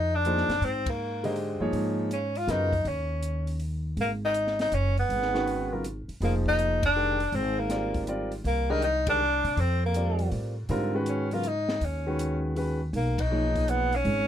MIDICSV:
0, 0, Header, 1, 6, 480
1, 0, Start_track
1, 0, Tempo, 373134
1, 800, Time_signature, 3, 2, 24, 8
1, 18363, End_track
2, 0, Start_track
2, 0, Title_t, "Grand piano"
2, 0, Program_c, 0, 0
2, 334, Note_on_c, 0, 53, 66
2, 334, Note_on_c, 0, 58, 57
2, 341, Note_on_c, 0, 63, 65
2, 342, Note_on_c, 0, 68, 55
2, 345, Note_on_c, 0, 72, 73
2, 612, Note_off_c, 0, 53, 0
2, 612, Note_off_c, 0, 58, 0
2, 616, Note_off_c, 0, 63, 0
2, 616, Note_off_c, 0, 68, 0
2, 618, Note_off_c, 0, 72, 0
2, 1589, Note_on_c, 0, 56, 65
2, 1596, Note_on_c, 0, 50, 61
2, 1600, Note_on_c, 0, 67, 61
2, 1606, Note_on_c, 0, 72, 58
2, 1610, Note_on_c, 0, 75, 68
2, 2040, Note_off_c, 0, 56, 0
2, 2044, Note_off_c, 0, 50, 0
2, 2046, Note_off_c, 0, 67, 0
2, 2048, Note_off_c, 0, 72, 0
2, 2051, Note_off_c, 0, 75, 0
2, 2063, Note_on_c, 0, 53, 71
2, 2068, Note_on_c, 0, 58, 63
2, 2070, Note_on_c, 0, 63, 67
2, 2074, Note_on_c, 0, 68, 70
2, 2080, Note_on_c, 0, 73, 84
2, 2679, Note_off_c, 0, 53, 0
2, 2681, Note_off_c, 0, 58, 0
2, 2682, Note_off_c, 0, 63, 0
2, 2684, Note_off_c, 0, 68, 0
2, 2687, Note_off_c, 0, 73, 0
2, 3181, Note_on_c, 0, 49, 59
2, 3190, Note_on_c, 0, 54, 49
2, 3193, Note_on_c, 0, 59, 55
2, 3199, Note_on_c, 0, 65, 49
2, 3201, Note_on_c, 0, 70, 63
2, 3474, Note_off_c, 0, 49, 0
2, 3479, Note_off_c, 0, 54, 0
2, 3480, Note_off_c, 0, 59, 0
2, 3483, Note_off_c, 0, 65, 0
2, 3484, Note_off_c, 0, 70, 0
2, 6865, Note_on_c, 0, 51, 69
2, 6868, Note_on_c, 0, 56, 53
2, 6873, Note_on_c, 0, 61, 59
2, 6877, Note_on_c, 0, 66, 59
2, 6882, Note_on_c, 0, 71, 71
2, 7316, Note_off_c, 0, 51, 0
2, 7317, Note_off_c, 0, 56, 0
2, 7320, Note_off_c, 0, 61, 0
2, 7322, Note_off_c, 0, 66, 0
2, 7325, Note_off_c, 0, 71, 0
2, 7358, Note_on_c, 0, 49, 51
2, 7358, Note_on_c, 0, 54, 49
2, 7362, Note_on_c, 0, 59, 49
2, 7365, Note_on_c, 0, 65, 54
2, 7368, Note_on_c, 0, 70, 59
2, 7501, Note_off_c, 0, 49, 0
2, 7501, Note_off_c, 0, 54, 0
2, 7503, Note_off_c, 0, 59, 0
2, 7504, Note_off_c, 0, 65, 0
2, 7506, Note_off_c, 0, 70, 0
2, 7996, Note_on_c, 0, 53, 61
2, 8002, Note_on_c, 0, 58, 55
2, 8004, Note_on_c, 0, 63, 54
2, 8008, Note_on_c, 0, 68, 56
2, 8008, Note_on_c, 0, 72, 63
2, 8728, Note_off_c, 0, 53, 0
2, 8731, Note_off_c, 0, 58, 0
2, 8732, Note_off_c, 0, 63, 0
2, 8734, Note_off_c, 0, 68, 0
2, 8734, Note_off_c, 0, 72, 0
2, 8952, Note_on_c, 0, 51, 54
2, 8957, Note_on_c, 0, 56, 52
2, 8962, Note_on_c, 0, 62, 43
2, 8966, Note_on_c, 0, 67, 49
2, 8969, Note_on_c, 0, 70, 57
2, 9238, Note_off_c, 0, 51, 0
2, 9241, Note_off_c, 0, 56, 0
2, 9243, Note_off_c, 0, 62, 0
2, 9245, Note_off_c, 0, 67, 0
2, 9247, Note_off_c, 0, 70, 0
2, 9902, Note_on_c, 0, 55, 53
2, 9911, Note_on_c, 0, 60, 45
2, 9912, Note_on_c, 0, 65, 46
2, 9914, Note_on_c, 0, 70, 50
2, 9920, Note_on_c, 0, 74, 57
2, 10371, Note_off_c, 0, 55, 0
2, 10374, Note_off_c, 0, 60, 0
2, 10376, Note_off_c, 0, 65, 0
2, 10377, Note_off_c, 0, 70, 0
2, 10380, Note_off_c, 0, 74, 0
2, 10394, Note_on_c, 0, 60, 56
2, 10395, Note_on_c, 0, 55, 61
2, 10401, Note_on_c, 0, 65, 58
2, 10403, Note_on_c, 0, 70, 57
2, 10405, Note_on_c, 0, 74, 67
2, 10679, Note_off_c, 0, 55, 0
2, 10679, Note_off_c, 0, 60, 0
2, 10683, Note_off_c, 0, 65, 0
2, 10683, Note_off_c, 0, 70, 0
2, 10685, Note_off_c, 0, 74, 0
2, 11184, Note_on_c, 0, 51, 69
2, 11191, Note_on_c, 0, 56, 69
2, 11192, Note_on_c, 0, 62, 74
2, 11196, Note_on_c, 0, 67, 62
2, 11201, Note_on_c, 0, 70, 90
2, 11334, Note_off_c, 0, 51, 0
2, 11337, Note_off_c, 0, 56, 0
2, 11338, Note_off_c, 0, 62, 0
2, 11339, Note_off_c, 0, 67, 0
2, 11342, Note_off_c, 0, 70, 0
2, 11675, Note_on_c, 0, 51, 54
2, 11680, Note_on_c, 0, 56, 47
2, 11683, Note_on_c, 0, 62, 52
2, 11686, Note_on_c, 0, 67, 55
2, 11689, Note_on_c, 0, 70, 61
2, 11819, Note_off_c, 0, 51, 0
2, 11822, Note_off_c, 0, 56, 0
2, 11823, Note_off_c, 0, 62, 0
2, 11825, Note_off_c, 0, 67, 0
2, 11826, Note_off_c, 0, 70, 0
2, 12803, Note_on_c, 0, 55, 58
2, 12808, Note_on_c, 0, 60, 50
2, 12812, Note_on_c, 0, 65, 43
2, 12818, Note_on_c, 0, 74, 57
2, 12819, Note_on_c, 0, 70, 46
2, 13533, Note_off_c, 0, 55, 0
2, 13536, Note_off_c, 0, 60, 0
2, 13538, Note_off_c, 0, 65, 0
2, 13541, Note_off_c, 0, 70, 0
2, 13541, Note_off_c, 0, 74, 0
2, 13759, Note_on_c, 0, 50, 74
2, 13761, Note_on_c, 0, 55, 67
2, 13766, Note_on_c, 0, 60, 68
2, 13772, Note_on_c, 0, 65, 73
2, 13775, Note_on_c, 0, 70, 81
2, 14043, Note_off_c, 0, 50, 0
2, 14045, Note_off_c, 0, 55, 0
2, 14047, Note_off_c, 0, 60, 0
2, 14050, Note_off_c, 0, 65, 0
2, 14052, Note_off_c, 0, 70, 0
2, 14078, Note_on_c, 0, 51, 62
2, 14083, Note_on_c, 0, 56, 60
2, 14086, Note_on_c, 0, 61, 62
2, 14091, Note_on_c, 0, 66, 61
2, 14096, Note_on_c, 0, 71, 76
2, 14493, Note_off_c, 0, 51, 0
2, 14496, Note_off_c, 0, 56, 0
2, 14497, Note_off_c, 0, 61, 0
2, 14499, Note_off_c, 0, 66, 0
2, 14502, Note_off_c, 0, 71, 0
2, 14567, Note_on_c, 0, 49, 53
2, 14567, Note_on_c, 0, 54, 51
2, 14574, Note_on_c, 0, 59, 50
2, 14578, Note_on_c, 0, 65, 53
2, 14582, Note_on_c, 0, 70, 63
2, 14707, Note_off_c, 0, 49, 0
2, 14707, Note_off_c, 0, 54, 0
2, 14711, Note_off_c, 0, 59, 0
2, 14713, Note_off_c, 0, 65, 0
2, 14715, Note_off_c, 0, 70, 0
2, 15521, Note_on_c, 0, 51, 64
2, 15525, Note_on_c, 0, 56, 56
2, 15528, Note_on_c, 0, 61, 52
2, 15530, Note_on_c, 0, 66, 52
2, 15535, Note_on_c, 0, 71, 60
2, 16130, Note_off_c, 0, 51, 0
2, 16132, Note_off_c, 0, 56, 0
2, 16134, Note_off_c, 0, 61, 0
2, 16135, Note_off_c, 0, 66, 0
2, 16137, Note_off_c, 0, 71, 0
2, 16164, Note_on_c, 0, 51, 57
2, 16165, Note_on_c, 0, 56, 55
2, 16170, Note_on_c, 0, 61, 56
2, 16171, Note_on_c, 0, 66, 55
2, 16177, Note_on_c, 0, 71, 72
2, 16448, Note_off_c, 0, 51, 0
2, 16449, Note_off_c, 0, 56, 0
2, 16452, Note_off_c, 0, 61, 0
2, 16452, Note_off_c, 0, 66, 0
2, 16455, Note_off_c, 0, 71, 0
2, 17122, Note_on_c, 0, 53, 53
2, 17128, Note_on_c, 0, 58, 48
2, 17133, Note_on_c, 0, 63, 52
2, 17134, Note_on_c, 0, 68, 47
2, 17138, Note_on_c, 0, 73, 58
2, 17858, Note_off_c, 0, 53, 0
2, 17861, Note_off_c, 0, 58, 0
2, 17863, Note_off_c, 0, 63, 0
2, 17864, Note_off_c, 0, 68, 0
2, 17866, Note_off_c, 0, 73, 0
2, 18363, End_track
3, 0, Start_track
3, 0, Title_t, "Tenor saxophone"
3, 0, Program_c, 1, 66
3, 0, Note_on_c, 1, 63, 105
3, 200, Note_on_c, 1, 62, 99
3, 219, Note_off_c, 1, 63, 0
3, 831, Note_on_c, 1, 60, 84
3, 850, Note_off_c, 1, 62, 0
3, 1153, Note_on_c, 1, 58, 76
3, 1172, Note_off_c, 1, 60, 0
3, 1776, Note_off_c, 1, 58, 0
3, 2740, Note_on_c, 1, 61, 83
3, 3055, Note_on_c, 1, 65, 88
3, 3075, Note_off_c, 1, 61, 0
3, 3225, Note_on_c, 1, 63, 101
3, 3244, Note_off_c, 1, 65, 0
3, 3704, Note_on_c, 1, 61, 74
3, 3723, Note_off_c, 1, 63, 0
3, 4649, Note_off_c, 1, 61, 0
3, 5153, Note_on_c, 1, 58, 84
3, 5287, Note_off_c, 1, 58, 0
3, 5467, Note_on_c, 1, 63, 108
3, 5897, Note_off_c, 1, 63, 0
3, 5937, Note_on_c, 1, 63, 99
3, 6102, Note_on_c, 1, 61, 97
3, 6121, Note_off_c, 1, 63, 0
3, 6406, Note_off_c, 1, 61, 0
3, 6424, Note_on_c, 1, 59, 96
3, 7478, Note_off_c, 1, 59, 0
3, 8028, Note_on_c, 1, 58, 73
3, 8163, Note_off_c, 1, 58, 0
3, 8340, Note_on_c, 1, 63, 109
3, 8772, Note_off_c, 1, 63, 0
3, 8817, Note_on_c, 1, 62, 102
3, 9457, Note_on_c, 1, 60, 88
3, 9476, Note_off_c, 1, 62, 0
3, 9765, Note_on_c, 1, 58, 84
3, 9784, Note_off_c, 1, 60, 0
3, 10400, Note_off_c, 1, 58, 0
3, 10893, Note_on_c, 1, 58, 93
3, 11208, Note_on_c, 1, 63, 100
3, 11227, Note_off_c, 1, 58, 0
3, 11362, Note_off_c, 1, 63, 0
3, 11368, Note_on_c, 1, 63, 106
3, 11657, Note_off_c, 1, 63, 0
3, 11699, Note_on_c, 1, 62, 103
3, 12352, Note_on_c, 1, 60, 86
3, 12371, Note_off_c, 1, 62, 0
3, 12651, Note_off_c, 1, 60, 0
3, 12680, Note_on_c, 1, 58, 74
3, 13256, Note_off_c, 1, 58, 0
3, 14267, Note_on_c, 1, 61, 81
3, 14583, Note_on_c, 1, 65, 99
3, 14603, Note_off_c, 1, 61, 0
3, 14761, Note_on_c, 1, 63, 90
3, 14781, Note_off_c, 1, 65, 0
3, 15241, Note_on_c, 1, 61, 70
3, 15260, Note_off_c, 1, 63, 0
3, 16182, Note_off_c, 1, 61, 0
3, 16675, Note_on_c, 1, 58, 84
3, 16988, Note_on_c, 1, 63, 96
3, 17007, Note_off_c, 1, 58, 0
3, 17618, Note_on_c, 1, 59, 96
3, 17638, Note_off_c, 1, 63, 0
3, 17953, Note_on_c, 1, 61, 106
3, 17972, Note_off_c, 1, 59, 0
3, 18363, Note_off_c, 1, 61, 0
3, 18363, End_track
4, 0, Start_track
4, 0, Title_t, "Upright bass"
4, 0, Program_c, 2, 32
4, 0, Note_on_c, 2, 41, 88
4, 582, Note_off_c, 2, 41, 0
4, 626, Note_on_c, 2, 42, 75
4, 782, Note_off_c, 2, 42, 0
4, 789, Note_on_c, 2, 44, 85
4, 2019, Note_off_c, 2, 44, 0
4, 2061, Note_on_c, 2, 43, 66
4, 2211, Note_off_c, 2, 43, 0
4, 2219, Note_on_c, 2, 44, 82
4, 3136, Note_off_c, 2, 44, 0
4, 3183, Note_on_c, 2, 42, 83
4, 3635, Note_off_c, 2, 42, 0
4, 3662, Note_on_c, 2, 39, 85
4, 5056, Note_off_c, 2, 39, 0
4, 5103, Note_on_c, 2, 32, 81
4, 6017, Note_off_c, 2, 32, 0
4, 6070, Note_on_c, 2, 30, 77
4, 6518, Note_off_c, 2, 30, 0
4, 6547, Note_on_c, 2, 32, 77
4, 7776, Note_off_c, 2, 32, 0
4, 7981, Note_on_c, 2, 29, 83
4, 9375, Note_off_c, 2, 29, 0
4, 9421, Note_on_c, 2, 32, 88
4, 10815, Note_off_c, 2, 32, 0
4, 10860, Note_on_c, 2, 36, 90
4, 12093, Note_off_c, 2, 36, 0
4, 12146, Note_on_c, 2, 48, 74
4, 12299, Note_off_c, 2, 48, 0
4, 12307, Note_on_c, 2, 41, 86
4, 13220, Note_off_c, 2, 41, 0
4, 13270, Note_on_c, 2, 45, 81
4, 13719, Note_off_c, 2, 45, 0
4, 13750, Note_on_c, 2, 44, 86
4, 15144, Note_off_c, 2, 44, 0
4, 15193, Note_on_c, 2, 39, 82
4, 16587, Note_off_c, 2, 39, 0
4, 16634, Note_on_c, 2, 35, 90
4, 18029, Note_off_c, 2, 35, 0
4, 18069, Note_on_c, 2, 32, 96
4, 18363, Note_off_c, 2, 32, 0
4, 18363, End_track
5, 0, Start_track
5, 0, Title_t, "Muted upright bass strokes"
5, 7825, Note_on_c, 9, 29, 41
5, 7953, Note_off_c, 9, 29, 0
5, 18363, End_track
6, 0, Start_track
6, 0, Title_t, "Drums"
6, 320, Note_on_c, 9, 42, 48
6, 449, Note_off_c, 9, 42, 0
6, 482, Note_on_c, 9, 38, 26
6, 610, Note_off_c, 9, 38, 0
6, 637, Note_on_c, 9, 46, 40
6, 642, Note_on_c, 9, 38, 41
6, 766, Note_off_c, 9, 46, 0
6, 771, Note_off_c, 9, 38, 0
6, 802, Note_on_c, 9, 46, 48
6, 930, Note_off_c, 9, 46, 0
6, 1110, Note_on_c, 9, 36, 78
6, 1111, Note_on_c, 9, 51, 75
6, 1239, Note_off_c, 9, 36, 0
6, 1240, Note_off_c, 9, 51, 0
6, 1595, Note_on_c, 9, 46, 43
6, 1724, Note_off_c, 9, 46, 0
6, 1748, Note_on_c, 9, 46, 42
6, 1877, Note_off_c, 9, 46, 0
6, 2228, Note_on_c, 9, 46, 47
6, 2356, Note_off_c, 9, 46, 0
6, 2714, Note_on_c, 9, 42, 53
6, 2842, Note_off_c, 9, 42, 0
6, 3028, Note_on_c, 9, 46, 44
6, 3157, Note_off_c, 9, 46, 0
6, 3195, Note_on_c, 9, 38, 35
6, 3196, Note_on_c, 9, 42, 54
6, 3324, Note_off_c, 9, 38, 0
6, 3325, Note_off_c, 9, 42, 0
6, 3506, Note_on_c, 9, 36, 60
6, 3514, Note_on_c, 9, 46, 38
6, 3635, Note_off_c, 9, 36, 0
6, 3642, Note_off_c, 9, 46, 0
6, 3670, Note_on_c, 9, 46, 44
6, 3798, Note_off_c, 9, 46, 0
6, 4149, Note_on_c, 9, 42, 54
6, 4278, Note_off_c, 9, 42, 0
6, 4467, Note_on_c, 9, 46, 41
6, 4596, Note_off_c, 9, 46, 0
6, 4626, Note_on_c, 9, 46, 40
6, 4755, Note_off_c, 9, 46, 0
6, 5108, Note_on_c, 9, 46, 47
6, 5237, Note_off_c, 9, 46, 0
6, 5587, Note_on_c, 9, 42, 55
6, 5715, Note_off_c, 9, 42, 0
6, 5750, Note_on_c, 9, 38, 27
6, 5879, Note_off_c, 9, 38, 0
6, 5907, Note_on_c, 9, 46, 43
6, 5914, Note_on_c, 9, 38, 45
6, 6035, Note_off_c, 9, 46, 0
6, 6043, Note_off_c, 9, 38, 0
6, 6070, Note_on_c, 9, 42, 53
6, 6199, Note_off_c, 9, 42, 0
6, 6398, Note_on_c, 9, 46, 39
6, 6527, Note_off_c, 9, 46, 0
6, 6562, Note_on_c, 9, 46, 50
6, 6690, Note_off_c, 9, 46, 0
6, 6718, Note_on_c, 9, 38, 29
6, 6846, Note_off_c, 9, 38, 0
6, 6878, Note_on_c, 9, 38, 40
6, 7007, Note_off_c, 9, 38, 0
6, 7042, Note_on_c, 9, 46, 46
6, 7170, Note_off_c, 9, 46, 0
6, 7518, Note_on_c, 9, 42, 55
6, 7646, Note_off_c, 9, 42, 0
6, 7834, Note_on_c, 9, 46, 34
6, 7963, Note_off_c, 9, 46, 0
6, 7997, Note_on_c, 9, 46, 49
6, 8126, Note_off_c, 9, 46, 0
6, 8307, Note_on_c, 9, 36, 51
6, 8435, Note_off_c, 9, 36, 0
6, 8474, Note_on_c, 9, 42, 56
6, 8602, Note_off_c, 9, 42, 0
6, 8785, Note_on_c, 9, 36, 92
6, 8786, Note_on_c, 9, 51, 86
6, 8914, Note_off_c, 9, 36, 0
6, 8914, Note_off_c, 9, 51, 0
6, 9265, Note_on_c, 9, 46, 43
6, 9393, Note_off_c, 9, 46, 0
6, 9423, Note_on_c, 9, 46, 44
6, 9552, Note_off_c, 9, 46, 0
6, 9901, Note_on_c, 9, 38, 38
6, 9902, Note_on_c, 9, 42, 56
6, 10030, Note_off_c, 9, 38, 0
6, 10031, Note_off_c, 9, 42, 0
6, 10218, Note_on_c, 9, 46, 42
6, 10220, Note_on_c, 9, 36, 62
6, 10347, Note_off_c, 9, 46, 0
6, 10349, Note_off_c, 9, 36, 0
6, 10383, Note_on_c, 9, 42, 51
6, 10512, Note_off_c, 9, 42, 0
6, 10699, Note_on_c, 9, 46, 37
6, 10828, Note_off_c, 9, 46, 0
6, 10871, Note_on_c, 9, 46, 47
6, 11000, Note_off_c, 9, 46, 0
6, 11349, Note_on_c, 9, 42, 53
6, 11478, Note_off_c, 9, 42, 0
6, 11664, Note_on_c, 9, 51, 83
6, 11666, Note_on_c, 9, 36, 88
6, 11792, Note_off_c, 9, 51, 0
6, 11795, Note_off_c, 9, 36, 0
6, 12153, Note_on_c, 9, 46, 38
6, 12281, Note_off_c, 9, 46, 0
6, 12315, Note_on_c, 9, 46, 45
6, 12444, Note_off_c, 9, 46, 0
6, 12791, Note_on_c, 9, 42, 59
6, 12920, Note_off_c, 9, 42, 0
6, 13106, Note_on_c, 9, 46, 43
6, 13235, Note_off_c, 9, 46, 0
6, 13270, Note_on_c, 9, 46, 46
6, 13399, Note_off_c, 9, 46, 0
6, 13749, Note_on_c, 9, 46, 46
6, 13878, Note_off_c, 9, 46, 0
6, 14229, Note_on_c, 9, 42, 58
6, 14357, Note_off_c, 9, 42, 0
6, 14553, Note_on_c, 9, 46, 41
6, 14681, Note_off_c, 9, 46, 0
6, 14711, Note_on_c, 9, 42, 58
6, 14840, Note_off_c, 9, 42, 0
6, 15034, Note_on_c, 9, 38, 58
6, 15162, Note_off_c, 9, 38, 0
6, 15197, Note_on_c, 9, 46, 46
6, 15325, Note_off_c, 9, 46, 0
6, 15683, Note_on_c, 9, 42, 61
6, 15812, Note_off_c, 9, 42, 0
6, 16162, Note_on_c, 9, 46, 44
6, 16291, Note_off_c, 9, 46, 0
6, 16645, Note_on_c, 9, 46, 47
6, 16774, Note_off_c, 9, 46, 0
6, 16959, Note_on_c, 9, 36, 77
6, 16962, Note_on_c, 9, 51, 74
6, 17087, Note_off_c, 9, 36, 0
6, 17091, Note_off_c, 9, 51, 0
6, 17437, Note_on_c, 9, 36, 61
6, 17438, Note_on_c, 9, 46, 45
6, 17565, Note_off_c, 9, 36, 0
6, 17567, Note_off_c, 9, 46, 0
6, 17598, Note_on_c, 9, 42, 59
6, 17727, Note_off_c, 9, 42, 0
6, 17914, Note_on_c, 9, 46, 42
6, 18042, Note_off_c, 9, 46, 0
6, 18074, Note_on_c, 9, 46, 42
6, 18202, Note_off_c, 9, 46, 0
6, 18363, End_track
0, 0, End_of_file